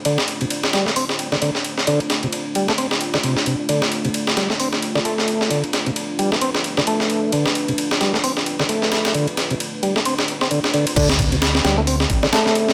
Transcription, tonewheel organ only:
X:1
M:4/4
L:1/16
Q:"Swing 16ths" 1/4=132
K:Ddor
V:1 name="Tonewheel organ" clef=bass
D, z2 C, z2 G, A, C z2 D, D, z3 | D, z2 C, z2 G, A, C z2 D, C, z C, z | D, z2 C, z2 G, A, C z2 D, A,4 | D, z2 C, z2 G, A, C z2 D, A,4 |
D, z2 C, z2 G, A, C z2 D, A,4 | D, z2 C, z2 G, A, C z2 C D, z D, z | D, z2 C, z2 G, A, C z2 D, A,4 |]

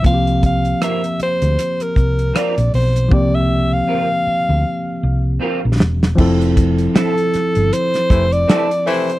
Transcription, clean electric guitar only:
X:1
M:4/4
L:1/8
Q:"Swing 16ths" 1/4=78
K:F
V:1 name="Clean electric guitar"
z2 [CFB] z3 [CFB] z | z2 [CFB] z3 [CFB] z | z2 [CEA] z3 [CEA] z |]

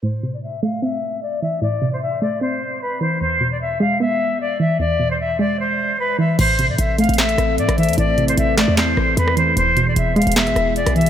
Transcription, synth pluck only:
X:1
M:4/4
L:1/8
Q:1/4=151
K:Am
V:1 name="Synth pluck" clef=bass
A,, C,2 A, C3 E, | A,, C,2 A, C3 E, | E,, B,,2 ^G, B,3 E, | E,, B,,2 ^G,4 E, |
A,, C,2 A, C3 E, | A,, C,2 A, C3 E, | E,, B,,2 ^G, B,3 E, |]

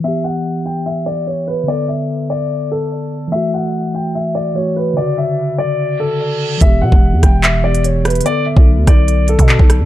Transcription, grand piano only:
X:1
M:4/4
L:1/8
Q:1/4=146
K:Edor
V:1 name="Grand piano"
e f2 g e d c B | d e2 d2 A3 | e f2 g e d c B | d e2 d2 A3 |
e f2 g e d c B | d e2 d2 A3 |]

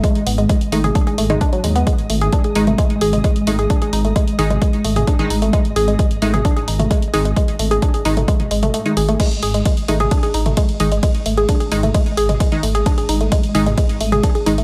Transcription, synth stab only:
X:1
M:4/4
L:1/16
Q:1/4=131
K:none
V:1 name="Synth stab" clef=bass
z6 [^D,^G,^D] z4 [D,G,D] z4 | z6 [^D,^G,^D] z6 z [D,G,D] z | z6 [^D,^G,^D] z6 [D,G,D] z2 | z6 [^D,^G,^D] z6 z [D,G,D] z |
z6 [^D,^G,^D] z6 [D,G,D] z2 | z6 [^D,^G,^D] z6 z [D,G,D] z | z6 [^D,^G,^D] z6 [D,G,D] z2 | z6 [^D,^G,^D] z6 z [D,G,D] z |]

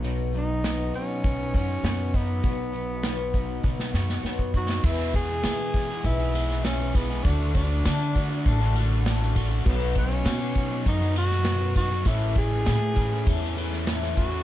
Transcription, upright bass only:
X:1
M:4/4
L:1/8
Q:1/4=100
K:E
V:1 name="Upright bass" clef=bass
B,,,3 z B,,, F,, F,,2 | B,,,4 B,,, F,, F,,2 | E,,2 E,2 B,,,4 | =D,,2 =D,2 A,,,4 |
B,,,2 B,,2 F,,4 | A,,,2 A,,2 E,,4 |]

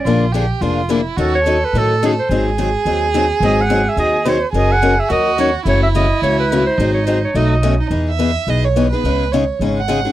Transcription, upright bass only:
X:1
M:4/4
L:1/8
Q:"Swing" 1/4=214
K:G#phr
V:1 name="Upright bass" clef=bass
^A,,,4 ^E,,,4 | D,,4 A,,4 | G,,,4 D,,4 | G,,,4 D,,4 |
F,,,4 D,,4 | F,,,4 C,,4 | G,,,4 B,,,4 | [K:E] E,,4 B,,,4 |
C,,4 G,,,4 |]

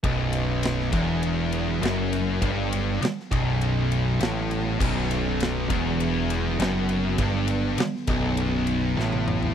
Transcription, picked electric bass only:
X:1
M:4/4
L:1/8
Q:1/4=100
K:Bm
V:1 name="Picked electric bass" clef=bass
B,,,,3 E,,,3 F,,,2 | G,,,2 z B,,,,3 A,,,2 | B,,,,3 E,,,3 F,,,2 | G,,,2 z B,,,,3 A,,,2 |]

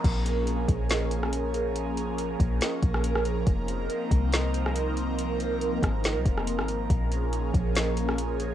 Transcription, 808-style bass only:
X:1
M:4/4
L:1/16
Q:1/4=140
K:Bbm
V:1 name="808-style bass" clef=bass
B,,,6 B,,,8- B,,,2- | B,,,6 B,,,2 z2 B,,,6 | F,,,4 z2 C,,8- C,,2- | C,,6 A,,,3 C,, F,,,3 A,,,3 |
B,,,6 B,,,8- B,,,2 |]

